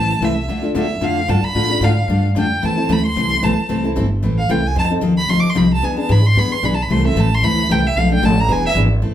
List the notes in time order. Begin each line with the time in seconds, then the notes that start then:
Already playing: A1 E3 A3 C4 E4 A4 A5
0.20 C2 E3 A3 C4 E4 A4
0.24 E5
0.48 D2 D3 A3 D4 F4 A4
0.62 D4 F4 A4
0.75 E2 D3 A3 D4 F4 A4 E5
1.01 F2 D3 A3 D4 F4 A4 F5
1.28 G2 D3 A3 D4 F4 A4 A5
1.42 B5, muted upright bass stroke
1.55 A2 D3 A3 D4 F4 A4
1.70 D4 F4 A4
1.81 G#2 D3 A3 D4 F4 A4 F5
2.08 G2 D3 A3 D4 F4 A4
2.35 F2 D3 A3 D4 F4 A4 G5
2.62 E2 E3 A3 C4 E4 A4 A5
2.77 C4 E4 A4
2.89 D2 E3 A3 C4 E4 A4 B5
3.06 C6
3.16 C2 E3 A3 C4 E4 A4
3.42 B1 E3 A3 C4 E4 A4 A5
3.69 C2 E3 A3 C4 E4 A4
3.84 C4 E4 A4
3.96 G1 E3 A3 C4 E4 A4
4.22 A1 E3 A3 C4 E4 A4
4.38 F5
4.49 C2 E3 A3 C4 E4 A4 G5
4.67 G#5
4.76 F2 F3 C4 D#4 A4 A5
4.91 C4 D#4 A4
5.01 D#2 F3 C4 D#4 A4
5.18 B5
5.29 D2 F3 C4 D#4 A4 C6
5.40 D6
5.44 muted upright bass stroke
5.49 C6
5.55 C2 F3 C4 D#4 A4 B5
5.74 A5
5.82 E2 E3 B3 D4 G#4 G#5
5.97 B3 D4 G#4 A5
6.09 G#2 E3 B3 D4 G#4 B5
6.26 C6
6.35 E2 E3 B3 D4 G#4 B5
6.51 C6, muted upright bass stroke
6.63 B1 E3 B3 D4 G#4 B5
6.74 A5
6.82 B5
6.89 C2 E3 A3 C4 E4 A4 C6
7.05 C4 E4 A4 E5
7.14 A1 E3 A3 C4 E4 A4
7.19 A5
7.34 C6
7.42 D2 E3 A3 C4 E4 A4 B5
7.69 C2 E3 A3 C4 E4 A4 G5
7.87 E5
7.96 B1 B2 F3 A3 D4 A4 F5
8.11 A3 D4 A4 G5
8.23 A1 B2 F3 A3 D4 A4 A5
8.40 A#5
8.48 E1 E3 B3 D4 G#4 G#5
8.66 E5
8.75 G#1 E3 B3 D4 G#4
9.02 A1 E3 A3 C4 E4 A4